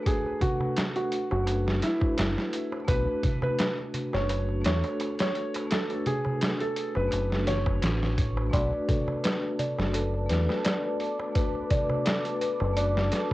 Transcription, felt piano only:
0.07 0.38 G#4 medium
0.42 0.90 F#4 medium
0.96 1.27 F#4 medium
1.32 1.78 F#4 medium
1.83 2.76 E4 medium
2.88 3.37 B4 medium
3.43 3.74 B4 medium
4.14 4.60 C#5 medium
4.66 5.14 C#5 medium
5.21 5.66 C#5 medium
5.71 6.03 A4 medium
6.07 6.55 G#4 medium
6.61 6.92 A4 medium
6.96 7.43 B4 medium
7.47 8.40 C#5 medium

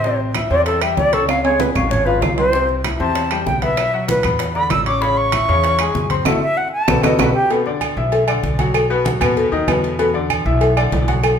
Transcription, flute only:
0.00 0.18 E5 medium
0.51 0.65 D5 loud
0.66 0.83 A4 medium
0.82 0.97 E5 medium
0.97 1.15 D5 medium
1.13 1.28 A4 medium
1.28 1.44 F5 medium
1.45 1.62 C#5 medium
1.60 1.74 B4 medium
1.75 1.92 F5 medium
1.91 2.07 C#5 medium
2.06 2.23 B4 medium
2.21 2.37 F5 medium
2.37 2.68 C5 medium
3.00 3.48 A5 medium
3.47 3.65 G5 medium
3.63 4.08 E5 medium
4.10 4.24 B4 medium
4.56 4.72 B5 medium
4.70 4.85 E6 medium
4.86 5.03 D6 medium
5.02 5.19 B5 medium
5.17 6.08 C#6 loud
6.42 6.59 E5 medium
6.57 6.72 F#5 medium
6.72 7.04 A5 medium
7.03 7.21 D#5 medium
7.19 7.33 B4 medium
7.34 7.49 G4 loud

